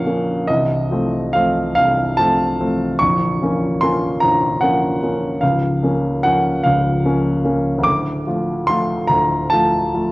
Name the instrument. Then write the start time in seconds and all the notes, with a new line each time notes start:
grand piano
Already playing: A#0 A#1 F3 A#3 C#4 F5 F#5 G#5
0.06 F3 A#3 C#4
0.48 C1 C2 D#5
0.91 F3 A3 C4
1.33 F3 A3 C4 F5
1.75 C1 C2 F5
2.17 F3 A3 C4 A5
2.60 F3 A3 C4
2.99 A#0 A#1 C#6
3.42 F3 A#3 C#4
3.81 F3 A#3 C#4 C6
4.20 A#0 A#1 A#5
4.61 F3 A#3 C#4 F#5
5.03 F3 A#3 C#4
5.41 C#1 C#2 F5
5.83 F3 A#3 C#4
6.23 F3 A#3 C#4 F#5
6.63 C#1 C#2 F5
7.05 F3 A#3 C#4
7.45 F3 A#3 C#4
7.78 D2
7.84 D1 D6
8.27 F3 A3 F4
8.67 F3 A3 F4 C6
9.07 D1 D2 A#5
9.50 F3 A3 F4 A5
9.94 F3 A3 F4